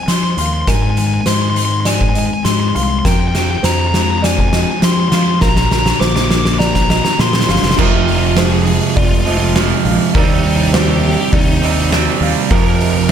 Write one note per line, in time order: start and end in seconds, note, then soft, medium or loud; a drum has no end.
0.00 0.36 F3 medium
0.00 0.68 G3 medium
0.00 0.38 D#5 medium
0.00 0.11 G#5 medium
0.07 0.33 F3 medium
0.07 1.58 C4 medium
0.07 0.16 C6 medium
0.07 snare medium
0.07 closed hi-hat medium
0.16 0.23 C6 medium
0.23 0.30 C6 medium
0.31 0.38 C6 medium
0.37 0.63 D#2 medium
0.37 0.67 F3 medium
0.37 0.68 F5 medium
0.37 0.46 C6 medium
0.37 closed hi-hat medium
0.46 0.53 C6 medium
0.54 0.61 C6 medium
0.61 0.69 C6 soft
0.67 2.16 G#2 medium
0.67 1.18 G#2 medium
0.67 1.27 A#4 medium
0.67 0.75 G#5 medium
0.67 kick loud
0.67 snare medium
0.67 closed hi-hat medium
0.75 0.82 G#5 medium
0.82 0.90 G#5 medium
0.90 0.98 G#5 medium
0.97 2.46 D#3 medium
0.97 1.06 G#5 medium
0.97 closed hi-hat medium
1.07 1.14 G#5 medium
1.14 1.21 G#5 medium
1.21 1.29 G#5 medium
1.26 2.27 G#2 medium
1.26 2.15 G#3 medium
1.26 1.86 C5 medium
1.26 1.34 C6 medium
1.26 snare medium
1.26 closed hi-hat loud
1.34 1.41 C6 medium
1.42 1.49 C6 medium
1.50 1.57 C6 medium
1.56 3.93 C4 medium
1.56 1.64 C6 medium
1.56 closed hi-hat medium
1.65 1.72 C6 medium
1.72 1.80 C6 medium
1.80 1.88 C6 medium
1.85 2.44 D#4 medium
1.85 2.15 D5 medium
1.85 1.94 G#5 medium
1.85 snare medium
1.85 closed hi-hat loud
1.95 2.01 G#5 medium
2.01 2.09 G#5 medium
2.01 kick medium
2.09 2.17 G#5 medium
2.15 2.73 G#3 medium
2.15 2.75 D#5 medium
2.15 2.25 G#5 medium
2.15 closed hi-hat medium
2.26 2.33 G#5 medium
2.34 2.41 G#5 medium
2.44 2.70 G#2 loud
2.44 3.05 D#4 medium
2.44 2.52 C6 medium
2.44 snare medium
2.44 closed hi-hat medium
2.52 2.59 C6 medium
2.60 2.68 C6 medium
2.68 2.76 C6 medium
2.75 3.01 C2 medium
2.75 3.05 G#3 medium
2.75 3.05 F5 medium
2.75 2.83 C6 medium
2.75 closed hi-hat medium
2.83 2.89 C6 medium
2.90 2.97 C6 medium
2.99 3.07 C6 medium
3.04 4.53 F2 medium
3.04 3.55 F2 medium
3.04 3.64 A#4 medium
3.04 3.11 G5 medium
3.04 kick loud
3.04 snare medium
3.04 closed hi-hat medium
3.11 3.19 G5 medium
3.20 3.27 G5 medium
3.28 3.35 G5 medium
3.34 4.82 C3 medium
3.34 3.42 G5 medium
3.34 snare medium
3.34 closed hi-hat medium
3.43 3.50 G5 medium
3.51 3.57 G5 medium
3.58 3.65 G5 medium
3.63 4.64 F2 medium
3.63 4.52 F3 medium
3.63 4.23 C5 medium
3.63 3.72 A#5 medium
3.63 snare medium
3.63 closed hi-hat medium
3.72 3.80 A#5 medium
3.80 3.86 A#5 medium
3.87 3.94 A#5 medium
3.93 5.41 G#3 medium
3.93 4.02 A#5 medium
3.93 snare medium
3.93 closed hi-hat medium
4.03 4.10 A#5 medium
4.11 4.18 A#5 medium
4.18 4.26 A#5 medium
4.22 4.82 C4 medium
4.22 4.52 D5 medium
4.22 4.31 G#5 medium
4.22 snare medium
4.22 closed hi-hat medium
4.31 4.39 G#5 medium
4.38 4.48 G#5 medium
4.38 kick medium
4.49 5.12 D#5 medium
4.49 4.55 G#5 medium
4.53 5.12 F3 medium
4.53 4.63 G#5 medium
4.53 snare medium
4.53 closed hi-hat medium
4.63 4.70 G#5 medium
4.71 4.78 G#5 medium
4.82 5.08 F3 loud
4.82 5.44 C4 medium
4.82 4.92 C6 medium
4.82 snare medium
4.82 closed hi-hat loud
4.92 5.00 C6 medium
5.00 5.08 C6 medium
5.08 5.37 F3 medium
5.08 5.41 F5 medium
5.08 5.15 C6 medium
5.08 snare medium
5.08 closed hi-hat medium
5.12 5.72 F3 medium
5.12 5.22 C6 medium
5.23 5.31 C6 medium
5.31 5.39 C6 medium
5.41 5.92 A#1 medium
5.41 6.89 A#2 medium
5.41 6.01 A#4 medium
5.41 5.48 A#5 medium
5.41 kick loud
5.41 snare medium
5.49 5.56 A#5 medium
5.56 5.65 A#5 medium
5.56 snare medium
5.65 5.72 A#5 medium
5.71 6.00 D3 medium
5.71 5.79 A#5 medium
5.71 snare medium
5.79 5.87 A#5 medium
5.86 5.96 A#5 medium
5.86 snare loud
5.96 6.00 A#5 medium
6.00 7.01 A#1 medium
6.00 6.88 D3 medium
6.00 6.60 C5 medium
6.00 6.08 D6 loud
6.00 snare loud
6.08 6.15 D6 medium
6.16 6.23 D6 medium
6.16 snare loud
6.24 6.30 D6 medium
6.30 7.78 A#3 medium
6.30 6.38 D6 medium
6.30 snare loud
6.39 6.46 D6 medium
6.45 6.53 D6 medium
6.45 snare medium
6.54 6.59 D6 medium
6.59 7.17 C4 medium
6.59 6.89 D5 medium
6.59 6.66 A#5 loud
6.59 snare loud
6.67 6.73 A#5 medium
6.74 6.81 A#5 loud
6.74 kick medium
6.74 snare medium
6.82 6.90 A#5 medium
6.89 7.47 D3 medium
6.89 7.49 D#5 medium
6.89 6.97 A#5 loud
6.89 snare loud
6.97 7.04 A#5 medium
7.05 7.12 A#5 loud
7.05 snare loud
7.13 7.20 A#5 medium
7.18 7.44 A#2 loud
7.18 7.78 C4 medium
7.18 7.28 C6 medium
7.18 snare loud
7.28 7.35 C6 medium
7.33 7.43 C6 medium
7.33 snare loud
7.41 7.51 C6 medium
7.41 snare loud
7.48 7.62 G1 medium
7.48 7.78 D3 medium
7.48 7.78 F5 medium
7.48 7.59 C6 medium
7.48 snare loud
7.56 7.67 C6 medium
7.56 snare loud
7.63 7.76 F1 medium
7.63 snare loud
7.68 7.76 C6 medium
7.68 snare loud
7.78 8.79 F1 loud
7.78 9.24 F2 medium
7.78 9.26 F2 medium
7.78 9.24 C3 loud
7.78 9.24 F3 loud
7.78 7.88 F4 loud
7.78 8.37 A#4 medium
7.78 kick loud
7.78 crash loud
7.88 7.96 F4 medium
7.97 8.03 F4 medium
8.04 8.11 F4 medium
8.08 9.55 F3 medium
8.08 8.18 F4 medium
8.08 open hi-hat medium
8.19 8.26 F4 medium
8.27 8.35 F4 medium
8.37 9.26 G#3 medium
8.37 8.45 G#4 loud
8.37 8.96 C5 medium
8.37 snare loud
8.37 open hi-hat medium
8.46 8.52 G#4 medium
8.52 8.60 G#4 medium
8.62 8.68 G#4 medium
8.67 9.55 F4 medium
8.67 8.75 G#4 loud
8.67 open hi-hat medium
8.76 8.83 G#4 medium
8.84 8.90 G#4 loud
8.90 8.98 G#4 medium
8.96 9.72 F1 loud
8.96 10.74 C4 medium
8.96 9.04 F4 loud
8.96 9.26 D5 loud
8.96 kick loud
8.96 open hi-hat medium
9.05 9.11 F4 medium
9.11 9.19 F4 medium
9.21 9.27 F4 medium
9.25 9.54 F2 medium
9.25 9.54 C3 medium
9.25 9.53 F3 medium
9.25 9.85 G#3 medium
9.25 9.35 F4 medium
9.25 9.84 D#5 medium
9.25 open hi-hat medium
9.37 9.44 F4 medium
9.44 9.52 F4 medium
9.55 10.12 F2 medium
9.55 10.13 C3 medium
9.55 10.14 F3 medium
9.55 10.15 F4 medium
9.55 snare loud
9.55 open hi-hat medium
9.84 9.97 A#1 medium
9.84 10.15 G#3 medium
9.84 10.14 F5 medium
9.84 open hi-hat medium
10.14 11.15 D#2 loud
10.14 11.60 C3 loud
10.14 11.62 D#3 medium
10.14 11.61 G3 loud
10.14 11.61 C4 loud
10.14 10.74 A#4 medium
10.14 kick loud
10.14 open hi-hat medium
10.18 10.25 D#4 medium
10.25 10.33 D#4 medium
10.33 10.40 D#4 medium
10.40 11.92 G3 medium
10.40 10.48 D#4 medium
10.45 10.56 D#4 medium
10.45 open hi-hat medium
10.57 10.63 D#4 medium
10.63 10.71 D#4 medium
10.73 11.60 C4 medium
10.73 10.82 G4 loud
10.73 11.32 C5 medium
10.73 snare loud
10.73 open hi-hat medium
10.83 10.90 G4 medium
10.91 10.97 G4 medium
10.97 11.05 G4 medium
11.03 11.89 G4 medium
11.03 11.13 G4 loud
11.03 open hi-hat medium
11.13 11.21 G4 medium
11.21 11.29 G4 medium
11.32 12.08 D#2 loud
11.32 11.41 D#4 medium
11.32 11.62 D5 medium
11.32 kick loud
11.32 open hi-hat medium
11.42 11.48 D#4 medium
11.49 11.57 D#4 medium
11.57 12.19 C4 medium
11.57 11.65 D#4 medium
11.62 11.89 C3 medium
11.62 11.90 G3 medium
11.62 11.90 C4 medium
11.62 12.21 D#5 medium
11.62 open hi-hat medium
11.66 11.72 D#4 medium
11.72 11.80 D#4 medium
11.81 11.89 D#4 medium
11.90 12.48 C3 medium
11.90 12.49 G3 medium
11.90 12.50 C4 medium
11.90 12.50 G4 medium
11.90 snare loud
11.90 open hi-hat medium
12.20 12.33 D#2 medium
12.20 12.50 C4 medium
12.20 12.50 F5 medium
12.20 open hi-hat medium
12.49 13.12 F2 loud
12.49 13.12 C3 loud
12.49 12.78 F3 medium
12.49 13.12 F3 loud
12.49 13.10 A#4 medium
12.49 12.60 A#4 loud
12.49 kick loud
12.49 open hi-hat medium
12.60 12.67 A#4 medium
12.67 12.75 A#4 loud
12.75 12.82 A#4 medium
12.80 13.12 F3 medium
12.80 12.90 A#4 medium
12.80 open hi-hat medium
12.91 12.97 A#4 medium
12.98 13.04 A#4 medium
13.04 13.10 A#4 medium
13.08 13.12 C4 medium